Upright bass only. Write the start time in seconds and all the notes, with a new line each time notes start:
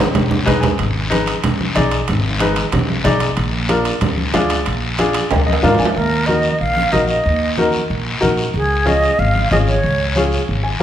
0.16 B1
0.47 B1
0.80 G#1
1.45 B1
1.77 B1
2.09 G#1
2.73 B1
3.05 B1
3.37 A#1
4.02 D2
4.34 D2
4.67 A#1
5.32 D2
5.64 G#2
5.80 F2
5.96 D#2
6.61 A#1
6.93 A#1
7.25 D#2
7.90 A#1
8.22 A#1
8.54 C#2
9.19 G#1
9.51 G#1
9.84 C#2
10.49 G#1